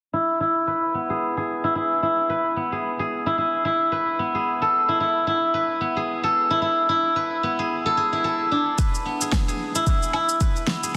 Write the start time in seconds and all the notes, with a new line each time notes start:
0.13 E4
0.40 E4
0.67 B4
0.94 B3
1.10 G#4
1.37 G#4
1.64 E4
1.75 E4
2.03 E4
2.30 B4
2.56 B3
2.72 G#4
2.99 G#4
3.26 E4
3.38 E4
3.65 E4
3.92 B4
4.19 B3
4.35 G#4
4.62 A4
4.89 E4
5.00 E4
5.27 E4
5.54 B4
5.81 B3
5.97 G#4
6.24 A4
6.50 E4
6.62 E4
6.89 E4
7.16 B4
7.43 B3
7.59 G#4
7.86 A4
7.97 G#4
8.13 E4
8.24 A4
8.51 D4
8.78 B4, kick, shaker
8.94 shaker
9.05 B3
9.21 G#4, shaker
9.32 kick, snare, low woodblock, shaker
9.48 G#4, shaker
9.75 E4, shaker
9.87 E4, kick, shaker
10.03 shaker
10.13 E4, low woodblock
10.29 shaker
10.40 B4, kick, shaker
10.56 shaker
10.67 B3, snare
10.83 G#4, shaker